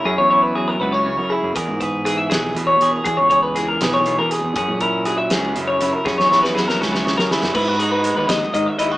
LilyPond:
<<
  \new Staff \with { instrumentName = "Clean electric guitar" } { \time 6/8 \key fis \mixolydian \tempo 4. = 80 gis'16 cis''16 cis''16 b'16 gis'16 ais'16 b'16 cis''8 ais'16 gis'8 | ais'8 b'8 gis'16 e''16 gis'8 r16 cis''8 ais'16 | gis'16 cis''16 cis''16 b'16 gis'16 ais'16 b'16 cis''8 ais'16 gis'8 | gis'8 ais'8 gis'16 e''16 gis'8 r16 cis''8 ais'16 |
gis'16 cis''16 cis''16 b'16 gis'16 ais'16 b'16 cis''8 ais'16 gis'8 | b'8 gis'16 b'8 b'16 dis''8 dis''16 e''16 dis''8 | }
  \new Staff \with { instrumentName = "Clean electric guitar" } { \time 6/8 \key fis \mixolydian << { <cis' e'>8 e'4 b16 cis'8. e'8 | gis'8 gis'4 gis'4 gis'8 | gis'8 gis'4 gis'4 gis'8 | cis'8 e'4 cis'4 e'8 |
cis'8 e'4 cis'4 e'8 | e'16 fis'16 dis'2 e'16 fis'16 | } \\ { fis,4 fis4 cis4 | e,4 e4 b,4 | e,4 e4 b,4 | fis,4 fis4 cis4 |
fis,4 fis4 cis4 | gis,4 gis4 dis4 | } >> }
  \new Staff \with { instrumentName = "Fingered electric bass" } { \clef bass \time 6/8 \key fis \mixolydian fis,16 e,4~ e,16 cis,8. fis16 r16 fis,16 | e,16 gis,4~ gis,16 b,,8 e,8 e,16 r16 | e,16 cis,4~ cis,16 b,,8. e16 r16 e,16 | fis,16 ais,4~ ais,16 cis,8 fis,8 fis,16 r16 |
fis,16 e,4~ e,16 cis,8. fis16 r16 fis,16 | gis,4~ gis,16 dis,16 dis,16 r16 gis,16 r16 dis,8 | }
  \new DrumStaff \with { instrumentName = "Drums" } \drummode { \time 6/8 r4. r4. | <hh bd>8 <hh bd>8 hh8 <hh sn>8 hh8 hh8 | <hh bd>8 <hh bd>8 hh8 <hh sn>8 hh8 hh8 | <hh bd>8 <hh bd>8 hh8 <hh sn>8 hh8 hh8 |
<bd sn>16 sn16 sn16 sn16 sn16 sn16 sn16 sn16 sn16 sn16 sn16 sn16 | <cymc bd>8 hh8 hh8 <hh bd sn>8 hh8 hh8 | }
>>